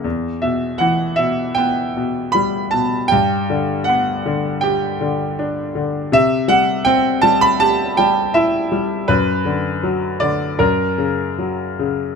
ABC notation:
X:1
M:4/4
L:1/16
Q:1/4=80
K:Edor
V:1 name="Grand piano"
z2 e2 f2 e2 g4 b2 a2 | g4 f4 g6 z2 | e2 f2 g2 a b a2 g2 e3 z | B4 z2 d2 ^A4 z4 |]
V:2 name="Grand piano" clef=bass
E,,2 B,,2 E,2 B,,2 B,2 B,,2 G,2 B,,2 | G,,2 D,2 B,2 D,2 G2 D,2 D2 D,2 | =C,2 G,2 =C2 G,2 G2 G,2 E2 G,2 | F,,2 D,2 F,2 D,2 F,,2 C,2 F,2 C,2 |]